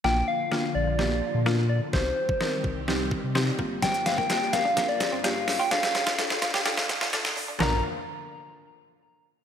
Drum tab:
HH |----------------|----------------|xxx-x-x-x-x-x-o-|xxxxx-x-x-x-x-o-|
CP |----------------|----------------|----------------|----------------|
SD |o---o---o---o---|o---o---o---o---|o-o-o-o-o-o-o-o-|oooooooooooooo--|
FT |----------------|----------------|----------------|----------------|
BD |----------------|o--o--o---o---o-|o--o--o-o-o-----|o--o--o---o-----|

HH |----------------|
CP |x---------------|
SD |o---------------|
FT |o---------------|
BD |----------------|